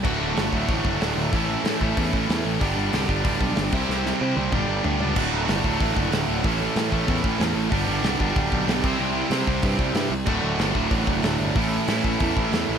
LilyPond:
<<
  \new Staff \with { instrumentName = "Distorted electric guitar" } { \time 4/4 \key d \mixolydian \tempo 4 = 188 <d, a, d a fis'>4. <d, a, d a fis'>2~ <d, a, d a fis'>8 | <a, e a cis' e' a'>4. <a, e a cis' e' a'>2~ <a, e a cis' e' a'>8 | <g, d g b d' g'>4. <g, d g b d' g'>2 <c g c' e' g' c''>8~ | <c g c' e' g' c''>4 <c g c' e' g' c''>4 <g, d g b d' g'>4. <g, d g b d' g'>8 |
<d, a, d a fis'>4. <d, a, d a fis'>2~ <d, a, d a fis'>8 | <a, e a cis' e' a'>4. <a, e a cis' e' a'>2~ <a, e a cis' e' a'>8 | <g, d g b d' g'>4. <g, d g b d' g'>2 <c g c' e' g' c''>8~ | <c g c' e' g' c''>4 <c g c' e' g' c''>2~ <c g c' e' g' c''>8 r8 |
<d, a, d a fis'>4. <d, a, d a fis'>2~ <d, a, d a fis'>8 | <a, e a cis' e' a'>4. <a, e a cis' e' a'>2~ <a, e a cis' e' a'>8 | }
  \new Staff \with { instrumentName = "Distorted electric guitar" } { \time 4/4 \key d \mixolydian <d, a, d a fis'>1 | <a, e a cis' e' a'>1 | <g, d g b d' g'>2.~ <g, d g b d' g'>8 <c g c' e' g' c''>8~ | <c g c' e' g' c''>2 <g, d g b d' g'>2 |
<d, a, d a fis'>1 | <a, e a cis' e' a'>1 | <g, d g b d' g'>2.~ <g, d g b d' g'>8 <c g c' e' g' c''>8~ | <c g c' e' g' c''>2.~ <c g c' e' g' c''>8 r8 |
<d, a, d a fis'>1 | <a, e a cis' e' a'>1 | }
  \new Staff \with { instrumentName = "Distorted electric guitar" } { \clef bass \time 4/4 \key d \mixolydian <d, a, d>8 <d, a, d>8 <d, a, d>8 <d, a, d>8 <d, a, d>8 <d, a, d>8 <d, a, d>8 <d, a, d>8 | <a, e a>8 <a, e a>8 <a, e a>8 <a, e a>8 <a, e a>8 <a, e a>8 <a, e a>8 <a, e a>8 | <g, d g>8 <g, d g>8 <g, d g>8 <g, d g>8 <g, d g>8 <g, d g>8 <g, d g>8 <c g c'>8 | <c g c'>8 <c g c'>8 <c g c'>8 <c g c'>8 <g, d g>8 <g, d g>8 <g, d g>8 <g, d g>8 |
<d, a, d>8 <d, a, d>8 <d, a, d>8 <d, a, d>8 <d, a, d>8 <d, a, d>8 <d, a, d>8 <d, a, d>8 | <a, e a>8 <a, e a>8 <a, e a>8 <a, e a>8 <a, e a>8 <a, e a>8 <a, e a>8 <a, e a>8 | <g, d g>8 <g, d g>8 <g, d g>8 <g, d g>8 <g, d g>8 <g, d g>8 <g, d g>8 <c g c'>8 | <c g c'>8 <c g c'>8 <c g c'>8 <c g c'>8 <c g c'>8 <c g c'>8 <c g c'>8 <c g c'>8 |
<d, a, d>8 <d, a, d>8 <d, a, d>8 <d, a, d>8 <d, a, d>8 <d, a, d>8 <d, a, d>8 <d, a, d>8 | <a, e a>8 <a, e a>8 <a, e a>8 <a, e a>8 <a, e a>8 <a, e a>8 <a, e a>8 <a, e a>8 | }
  \new Staff \with { instrumentName = "Picked electric bass" } { \clef bass \time 4/4 \key d \mixolydian d,,8 d,,8 g,,8 d,,8 a,,8 fis,,8 d,,8 d,,8 | a,,4 a,8 a,,8 e,8 a,,8 e,8 a,,8 | g,,8 g,,8 c,8 g,,8 d,,8 b,,8 g,,8 c,8 | c,4 c8 c,8 g,,8 g,,8 d,8 cis,8 |
d,,8 d,,8 g,,8 d,,8 a,,8 fis,,8 d,,8 d,,8 | a,,4 a,8 a,,8 e,8 a,,8 e,8 a,,8 | g,,8 g,,8 c,8 g,,8 d,,8 b,,8 b,,8 c,8 | c,4 c8 c,8 g,8 c,8 g,8 c,8 |
d,,8 d,,8 g,,8 d,,8 a,,8 fis,,8 d,,8 g,,8 | a,,4 a,8 a,,8 e,8 a,,8 e,8 a,,8 | }
  \new DrumStaff \with { instrumentName = "Drums" } \drummode { \time 4/4 <cymc bd>4 <hho sn>8 bd8 <hho bd>8 bd8 <hho sn>4 | <hho bd>4 <hho sn>8 bd8 <hho bd>8 bd8 <hho sn>4 | <hho bd>4 <hho sn>8 bd8 <hho bd>8 bd8 <hho sn>8 <cymc bd>8 | sn8 sn8 r8 tommh8 <bd toml>4 tomfh8 tomfh8 |
<cymc bd>4 <hho sn>8 bd8 <hho bd>8 bd8 <hho sn>4 | <hho bd>4 <hho sn>8 bd8 <hho bd>8 bd8 <hho sn>4 | <hho bd>4 <hho sn>8 bd8 <hho bd>8 bd8 <hho sn>8 <cymc bd>8 | r4 <hho sn>8 bd8 <hho bd>8 bd8 <hho sn>4 |
<cymc bd>4 <hho sn>8 bd8 <hho bd>8 bd8 <hho sn>4 | <hho bd>4 <hho sn>8 bd8 <hho bd>8 bd8 <hho sn>4 | }
>>